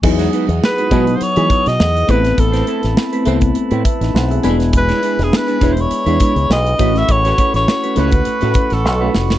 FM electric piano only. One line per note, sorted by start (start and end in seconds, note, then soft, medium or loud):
0.03 0.62 F#3 medium
0.03 0.63 B3 medium
0.03 0.63 D#4 medium
0.03 0.63 E4 medium
0.03 0.63 G#4 loud
0.91 1.21 F#3 medium
0.91 1.21 B3 medium
0.91 1.21 D#4 medium
0.91 1.21 E4 medium
0.91 1.21 B4 medium
1.36 2.04 F#3 medium
1.36 2.05 B3 medium
1.36 2.05 D#4 medium
1.36 2.05 E4 medium
1.36 2.05 G#4 medium
2.08 3.03 A3 medium
2.08 3.03 B3 medium
2.08 3.03 C4 medium
2.08 3.03 E4 medium
2.08 3.03 B4 medium
3.25 3.56 A3 loud
3.25 3.56 B3 medium
3.25 3.56 C4 medium
3.25 3.56 E4 medium
3.25 3.56 B4 loud
3.85 4.12 E5 medium
4.02 4.15 D#4 soft
4.02 4.14 B4 medium
4.15 4.31 E4 medium
4.15 4.30 C5 medium
4.15 4.43 F#5 medium
4.31 4.59 G#4 medium
4.31 4.59 E5 medium
4.43 4.51 G3 medium
4.43 5.38 B3 loud
4.43 5.39 D4 medium
4.43 5.39 E4 medium
4.43 5.39 B4 loud
4.43 4.71 G#5 medium
4.50 5.41 G#3 loud
5.61 5.91 G#3 medium
5.61 5.91 B3 medium
5.61 5.91 D4 medium
5.61 5.91 E4 medium
5.61 5.91 B4 medium
6.07 6.75 G#3 medium
6.07 6.75 B3 medium
6.07 6.75 D4 medium
6.07 6.75 E4 medium
6.07 6.75 B4 medium
6.79 7.74 A3 medium
6.79 7.74 C#4 medium
6.79 7.74 E4 medium
6.79 7.74 F#4 medium
6.79 7.74 B4 medium
7.95 8.26 A3 medium
7.95 8.26 C#4 medium
7.95 8.26 E4 medium
7.95 8.26 F#4 medium
7.95 8.26 B4 medium
8.42 9.10 A3 medium
8.42 9.10 C#4 medium
8.42 9.10 E4 medium
8.42 9.10 F#4 medium
8.42 9.10 B4 medium